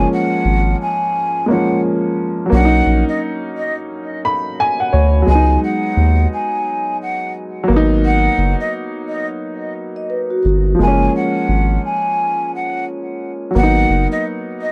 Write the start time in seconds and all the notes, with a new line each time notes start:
Already playing: F3 G#3 A#3 C#4
0.12 F#5
0.45 G#1
0.81 G#5
1.46 G#3 A#3
1.50 F3 C#4 F#5
2.46 F#3
2.50 B1 A#3 F#5
2.54 C#4
2.58 D4
2.65 D#4
2.86 A#1
3.08 D#5
3.57 D#5
4.25 B5
4.60 G#5
4.80 F#5
4.93 D2 C#5
5.22 F#3
5.26 C#2 G#3 G#5
5.31 B3
5.35 D#4
5.63 F#5
5.97 D#2
6.32 G#5
7.01 F#5
7.64 F#3
7.68 G#1 A#3 B3
7.76 D#4
8.05 F#5
8.38 F#1
8.60 D#5
9.08 D#5
9.96 D#5
10.10 B4
10.30 F#4
10.45 G1
10.75 F3
10.79 F#1 G#3 G#5
10.83 A#3
10.88 C#4
11.15 F#5
11.49 G#1
11.84 G#5
12.54 F#5
13.51 F#3
13.55 G#1 A#3 B3 F#5
13.63 D#4
13.90 F#1
14.11 D#5
14.61 D#5